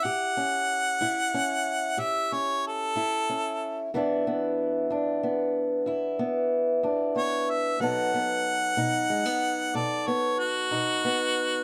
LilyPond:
<<
  \new Staff \with { instrumentName = "Harmonica" } { \time 12/8 \key a \major \tempo 4. = 62 fis''2. e''8 cis''8 a'2 | r1 r4 cis''8 e''8 | fis''2. d''8 cis''8 fis'2 | }
  \new Staff \with { instrumentName = "Steel-string acoustic guitar" } { \time 12/8 \key a \major << { g'8 cis'4 e'8 cis'4 g'8 cis'4 e'8 cis'4 | <e b d' e'>8 b4 d'8 b4 e'8 b4 d'8 b4 | <fis b dis' a'>8 b4 dis'8 gis16 b8. a'8 b4 dis'8 b4 | } \\ { a,4 r8 a,4 r8 a,4 r8 a,4 r8 | e,4 r8 e,4 r8 e,4 r8 e,4 r8 | b,4 r8 b,4 r8 b,4 r8 b,4 r8 | } >> }
>>